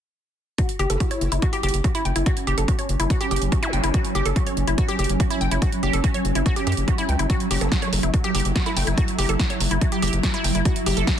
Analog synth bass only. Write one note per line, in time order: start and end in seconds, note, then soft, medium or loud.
0.79 0.86 F#1 medium
0.90 0.97 F#1 medium
1.21 1.28 F#1 medium
1.32 1.39 F#1 medium
1.63 1.70 F#1 loud
1.74 1.81 F#1 medium
2.05 2.12 F#1 medium
2.16 2.23 F#1 medium
2.47 2.54 F#1 medium
2.58 2.65 F#1 medium
2.89 2.96 F#1 loud
3.00 3.07 F#1 medium
3.31 3.38 F#1 loud
3.42 3.49 F#1 medium
3.73 3.80 F#1 medium
3.84 3.90 F#1 medium
4.15 4.22 F#1 medium
4.25 4.32 F#1 medium
4.57 4.64 F#1 loud
4.67 4.74 F#1 medium
4.99 5.06 F#1 loud
5.09 5.16 F#1 medium
5.41 5.48 F#1 medium
5.51 5.58 F#1 medium
5.83 5.90 F#1 loud
5.93 6.00 F#1 medium
6.25 6.32 F#1 medium
6.35 6.42 F#1 medium
6.67 6.74 F#2 loud
6.77 6.84 F#1 medium
7.09 7.16 C#2 medium
7.19 7.26 F#1 medium
7.51 7.58 F#1 loud
7.61 7.68 F#1 medium
7.93 8.00 F#1 loud
8.03 8.10 F#1 medium
8.35 8.42 F#1 loud
8.45 8.52 F#1 medium
8.77 8.84 F#1 medium
8.87 8.94 F#1 medium
9.19 9.25 F#1 medium
9.29 9.36 F#1 medium
9.60 9.67 F#1 loud
9.71 9.78 F#1 medium
10.02 10.09 F#1 loud
10.13 10.20 F#1 medium
10.44 10.51 F#1 medium
10.55 10.62 F#1 medium
10.86 10.93 F#1 loud
10.97 11.04 F#1 medium